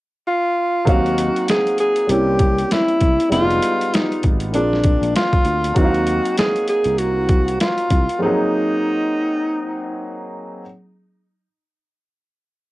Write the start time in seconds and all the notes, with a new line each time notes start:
0.28 F4
0.85 D#2 F#3 A#3 C4 D#4 F#4 F5, kick, closed hi-hat
1.06 closed hi-hat
1.18 closed hi-hat
1.36 closed hi-hat
1.48 G#4, snare, closed hi-hat
1.67 closed hi-hat
1.78 G#4, closed hi-hat
1.96 closed hi-hat
2.07 C2 G3 A#3 C4 C#4 G4, closed hi-hat
2.11 E4
2.39 kick, closed hi-hat
2.58 closed hi-hat
2.71 E4, snare, closed hi-hat
2.88 closed hi-hat
3.00 C2, kick, closed hi-hat
3.20 closed hi-hat
3.29 F1 G3 G#3 B3 D#4 F4, closed hi-hat
3.34 E4
3.40 F4
3.50 closed hi-hat
3.62 closed hi-hat
3.81 closed hi-hat
3.94 D#4, snare, closed hi-hat
4.12 closed hi-hat
4.23 G#1, kick, closed hi-hat
4.40 closed hi-hat
4.52 A#1 G#3 A#3 C4 D4, closed hi-hat
4.56 F4
4.73 snare
4.84 kick, closed hi-hat
5.01 A#1, closed hi-hat
5.16 F4, snare, closed hi-hat
5.33 kick, closed hi-hat
5.45 D2, closed hi-hat
5.64 closed hi-hat
5.74 D#2 F#3 A#3 C4 D#4 F#4, kick, closed hi-hat
5.78 E4
5.85 F5
5.95 closed hi-hat
6.07 closed hi-hat
6.26 closed hi-hat
6.38 G#4, snare, closed hi-hat
6.56 closed hi-hat
6.68 G#4, closed hi-hat
6.84 C2, closed hi-hat
6.98 F#4, closed hi-hat
7.29 kick, closed hi-hat
7.48 closed hi-hat
7.60 F4, snare, closed hi-hat
7.78 closed hi-hat
7.90 C2, kick, closed hi-hat
8.09 closed hi-hat
8.19 F3 A#3 C4 D#4
8.23 F#3 G#4